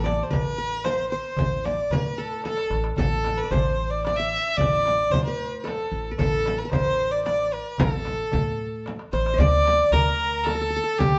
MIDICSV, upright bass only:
0, 0, Header, 1, 2, 480
1, 0, Start_track
1, 0, Tempo, 533808
1, 1241, Time_signature, 3, 2, 24, 8
1, 10059, End_track
2, 0, Start_track
2, 0, Title_t, "Upright bass"
2, 0, Program_c, 0, 32
2, 0, Note_on_c, 0, 33, 101
2, 179, Note_off_c, 0, 33, 0
2, 283, Note_on_c, 0, 33, 72
2, 1044, Note_off_c, 0, 33, 0
2, 1229, Note_on_c, 0, 33, 78
2, 1615, Note_off_c, 0, 33, 0
2, 1711, Note_on_c, 0, 45, 72
2, 2287, Note_off_c, 0, 45, 0
2, 2430, Note_on_c, 0, 33, 77
2, 2626, Note_off_c, 0, 33, 0
2, 2677, Note_on_c, 0, 33, 92
2, 3061, Note_off_c, 0, 33, 0
2, 3154, Note_on_c, 0, 33, 73
2, 3920, Note_off_c, 0, 33, 0
2, 4114, Note_on_c, 0, 33, 87
2, 4500, Note_off_c, 0, 33, 0
2, 4589, Note_on_c, 0, 45, 81
2, 5167, Note_off_c, 0, 45, 0
2, 5320, Note_on_c, 0, 33, 77
2, 5513, Note_off_c, 0, 33, 0
2, 5563, Note_on_c, 0, 33, 94
2, 5945, Note_off_c, 0, 33, 0
2, 6049, Note_on_c, 0, 33, 72
2, 6809, Note_off_c, 0, 33, 0
2, 7013, Note_on_c, 0, 33, 82
2, 7391, Note_off_c, 0, 33, 0
2, 7496, Note_on_c, 0, 45, 79
2, 8062, Note_off_c, 0, 45, 0
2, 8207, Note_on_c, 0, 33, 75
2, 8396, Note_off_c, 0, 33, 0
2, 8435, Note_on_c, 0, 38, 83
2, 8819, Note_off_c, 0, 38, 0
2, 8912, Note_on_c, 0, 38, 72
2, 9677, Note_off_c, 0, 38, 0
2, 9884, Note_on_c, 0, 38, 90
2, 10059, Note_off_c, 0, 38, 0
2, 10059, End_track
0, 0, End_of_file